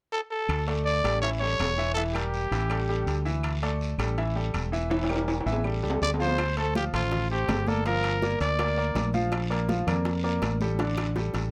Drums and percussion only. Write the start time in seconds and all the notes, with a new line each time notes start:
0.49 high timbale, long guiro, claves
0.68 high timbale
0.86 short guiro
1.05 high timbale, short guiro, claves
1.23 high timbale, long guiro
1.60 high timbale, low timbale, short guiro, claves
1.79 short guiro
1.97 high timbale, long guiro
2.15 high timbale, claves
2.34 short guiro
2.52 high timbale, short guiro
2.70 high timbale, long guiro, claves
3.07 high timbale, short guiro
3.26 short guiro
3.43 high timbale, long guiro, claves
3.63 high timbale
3.81 short guiro
3.99 high timbale, short guiro, claves
4.18 high timbale, long guiro
4.54 high timbale, short guiro, claves
4.73 short guiro
4.91 high timbale, long guiro
5.04 high timbale
5.09 claves
5.16 high timbale
5.28 high timbale, short guiro
5.41 high timbale
5.47 short guiro
5.53 low timbale
5.64 long guiro, claves
5.90 low timbale
6.02 low timbale, short guiro
6.14 low timbale
6.20 short guiro
6.26 low timbale
6.38 high bongo, high conga, high timbale, long guiro, claves
6.57 high conga, high timbale
6.75 high bongo, high conga, short guiro
6.94 high bongo, high conga, low conga, high timbale, short guiro, claves
7.12 high bongo, high conga, low conga, high timbale, long guiro
7.30 high bongo, high conga
7.49 high bongo, low bongo, high conga, high timbale, low timbale, short guiro, claves
7.67 high bongo, high conga, short guiro
7.86 high bongo, high conga, high timbale, long guiro
8.03 high bongo, high conga, high timbale, claves
8.22 high bongo, high conga, short guiro
8.41 high bongo, high conga, high timbale, short guiro
8.59 high bongo, high conga, high timbale, long guiro, claves
8.77 high conga
8.95 high bongo, low bongo, high conga, high timbale, short guiro
9.13 high bongo, high conga, short guiro
9.32 high bongo, high conga, high timbale, long guiro, claves
9.51 high conga, high timbale
9.69 high bongo, high conga, short guiro
9.87 high bongo, high conga, low conga, high timbale, short guiro, claves
10.05 high bongo, high conga, high timbale, long guiro
10.24 high bongo, high conga
10.42 high bongo, low bongo, high conga, high timbale, short guiro, claves
10.61 high bongo, high conga, short guiro
10.79 high bongo, high conga, high timbale, long guiro
10.97 high bongo, high conga, high timbale, claves
11.16 high bongo, high conga, short guiro
11.34 high bongo, high conga, high timbale, short guiro